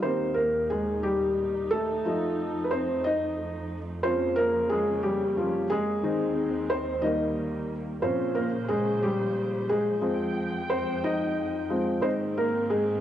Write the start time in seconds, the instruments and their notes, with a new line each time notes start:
0.02 string section D#2 A#2 D#3 D#4, felt piano D#3 A#3 C4 G4 C5
0.34 felt piano A#3 A#4
0.70 felt piano G#3 G#4
1.03 felt piano G3 G4
1.71 felt piano A3 A4
2.05 string section F2 F3 A3, felt piano F3 A3 D#4
2.64 felt piano B4
2.71 felt piano C4 C5
3.04 felt piano D#4 D#5
4.03 string section C#3 A#3, felt piano F3 C4 C#4 F4 C5
4.36 felt piano A#3 A#4
4.69 felt piano G#3 G#4
5.03 felt piano G3 G4
5.37 felt piano F3 C#4 F4
5.70 felt piano G#3 G#4
6.02 string section D#2 D#3 G#3 C4, felt piano D#3 C4 D#4
6.70 felt piano C4 C5
7.02 felt piano D#3 G3 A#3 D#4 D#5, string section G3 A#3
8.02 felt piano A#2 F3 C4 C#4 C5, string section A#2 C#3 F3 C5
8.35 felt piano A#3 A#4
8.69 felt piano G#3 G#4
9.03 felt piano G3 G4
9.69 felt piano G#3 G#4
10.02 felt piano F3 G#3 C4, string section G#3
10.06 string section F2 G5
10.70 felt piano C4 C5
11.04 felt piano D#4 D#5
11.70 felt piano F3 G#3 C4
12.01 string section G#2 D#3 A#3 C4, felt piano G#3 C4 D#4 C5
12.38 felt piano A#3 A#4
12.70 felt piano G#3 G#4